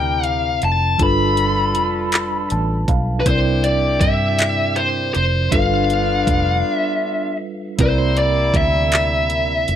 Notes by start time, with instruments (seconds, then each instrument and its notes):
Already playing: fingered electric bass D2, tine electric piano C3 C4 E4 A#4 D5, horn section E4 G4 A#4, lead electric guitar G5
0.24 lead electric guitar F5, closed hi-hat
0.62 fingered electric bass F1, lead electric guitar A5, closed hi-hat
0.98 fingered electric bass G1, tine electric piano G3 D4 F4 A4, horn section D4 F4 A4, kick, closed hi-hat
1.03 tine electric piano B4, lead electric guitar B5
1.37 closed hi-hat
1.75 fingered electric bass F1, closed hi-hat
2.12 clap, closed hi-hat
2.50 fingered electric bass A1, tine electric piano A5, closed hi-hat
2.88 fingered electric bass B1, tine electric piano F5, kick, closed hi-hat
3.20 lead electric guitar B4
3.25 fingered electric bass C2, tine electric piano C3 C4 E4 A#4, horn section D4 E4 G4, lead electric guitar C5, kick, closed hi-hat
3.30 tine electric piano D5
3.64 lead electric guitar D5, closed hi-hat
4.01 fingered electric bass G2, lead electric guitar E5, kick, closed hi-hat
4.39 clap, closed hi-hat
4.76 lead electric guitar C5, closed hi-hat
5.14 fingered electric bass F1, lead electric guitar C5, closed hi-hat
5.51 fingered electric bass G1, tine electric piano G3 D4 F4 A4, horn section B3 D4 F4, lead electric guitar F5, kick, closed hi-hat
5.56 tine electric piano B4
5.90 closed hi-hat
6.27 fingered electric bass F1, kick, closed hi-hat
6.70 lead electric guitar E5
7.78 fingered electric bass C2, tine electric piano C3 C4 E4 A#4, horn section G3 A#3 E4, lead electric guitar C5, kick, closed hi-hat
7.83 tine electric piano D5
8.17 lead electric guitar D5, closed hi-hat
8.54 fingered electric bass D2, lead electric guitar E5, kick, closed hi-hat
8.92 clap, closed hi-hat
9.30 closed hi-hat
9.68 fingered electric bass F1, closed hi-hat